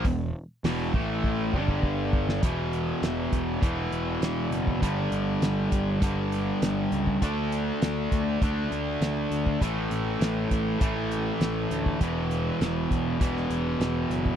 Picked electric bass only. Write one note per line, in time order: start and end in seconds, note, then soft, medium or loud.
0.05 0.32 E1 medium
0.64 0.92 E1 medium
0.94 1.50 A1 medium
1.54 2.39 G1 medium
2.43 2.91 E1 medium
3.02 3.27 E1 medium
3.32 3.57 E1 medium
3.62 3.87 E1 medium
3.91 4.16 E1 medium
4.21 4.46 E1 medium
4.51 4.82 F#1 medium
4.82 5.07 G1 medium
5.12 5.36 G1 medium
5.42 5.66 G1 medium
5.72 5.97 G1 medium
6.02 6.51 G1 medium
6.62 6.86 G1 medium
6.92 7.16 C#2 medium
7.22 7.70 D2 medium
7.82 8.06 D2 medium
8.12 8.36 D2 medium
8.41 8.66 D2 medium
8.71 8.96 D2 medium
9.01 9.25 D2 medium
9.31 9.55 D2 medium
9.62 9.86 A1 medium
9.91 10.15 A1 medium
10.21 10.45 A1 medium
10.51 10.75 A1 medium
10.81 11.30 A1 medium
11.41 11.65 A1 medium
11.71 11.95 D2 medium
12.01 12.49 E1 medium
12.61 12.85 E1 medium
12.91 13.15 E1 medium
13.21 13.45 E1 medium
13.50 13.75 E1 medium
13.80 14.04 E1 medium
14.10 14.35 F#1 medium